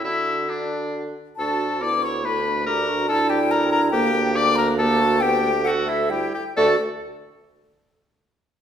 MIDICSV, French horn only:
0, 0, Header, 1, 2, 480
1, 0, Start_track
1, 0, Key_signature, 2, "major"
1, 0, Tempo, 451128
1, 30, Time_signature, 3, 2, 24, 8
1, 1469, Tempo, 426136
1, 5789, Tempo, 448766
1, 9422, End_track
2, 0, Start_track
2, 0, Title_t, "French horn"
2, 0, Program_c, 0, 60
2, 21, Note_on_c, 0, 66, 72
2, 1206, Note_off_c, 0, 66, 0
2, 1465, Note_on_c, 0, 62, 70
2, 1955, Note_on_c, 0, 59, 71
2, 1972, Note_off_c, 0, 62, 0
2, 2437, Note_on_c, 0, 57, 74
2, 2454, Note_off_c, 0, 59, 0
2, 2916, Note_on_c, 0, 62, 85
2, 2933, Note_off_c, 0, 57, 0
2, 3386, Note_off_c, 0, 62, 0
2, 3393, Note_on_c, 0, 62, 96
2, 4323, Note_off_c, 0, 62, 0
2, 4344, Note_on_c, 0, 58, 102
2, 4576, Note_off_c, 0, 58, 0
2, 4587, Note_on_c, 0, 58, 96
2, 5293, Note_off_c, 0, 58, 0
2, 5307, Note_on_c, 0, 58, 95
2, 5791, Note_on_c, 0, 59, 93
2, 5808, Note_off_c, 0, 58, 0
2, 6019, Note_on_c, 0, 57, 83
2, 6035, Note_off_c, 0, 59, 0
2, 6731, Note_on_c, 0, 55, 73
2, 6747, Note_off_c, 0, 57, 0
2, 6985, Note_off_c, 0, 55, 0
2, 7238, Note_on_c, 0, 57, 101
2, 7439, Note_off_c, 0, 57, 0
2, 9422, End_track
0, 0, End_of_file